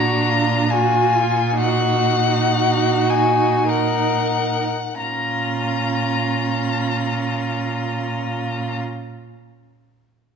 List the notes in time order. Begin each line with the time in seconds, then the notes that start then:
Already playing: A#2 D4 F#4 A#5
0.29 F4
0.71 F4 F#4 G#5
1.15 F4
1.59 D#4 F#4 F#5
2.56 F#4
3.09 G#5
3.67 D#4 A#4 F#5
4.99 A#2 C#4 F4 A#5